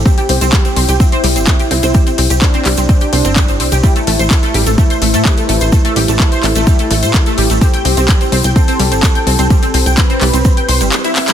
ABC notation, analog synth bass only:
X:1
M:4/4
L:1/16
Q:1/4=127
K:C
V:1 name="Analog synth bass" clef=bass
z2 C,, C,, z2 C,, C,, z2 C,, G,,, z2 C,, C,, | z2 C,, C,, z2 C,, C,, z2 C,, G,,,3 C,, C,, | z2 A,,, A,,, z2 A,,, A,,, z2 A,,, A,, z2 A,,, A,,, | z2 A,,, A,,, z2 A,,, A,,, z2 A,,, A,, z2 A,,, A,,, |
z2 C,, C,, z2 C,, C,, z2 C,, G,,, z2 C,, C,, | z2 C,, C,, z2 C,, C,, z2 C,, G,,, z4 |]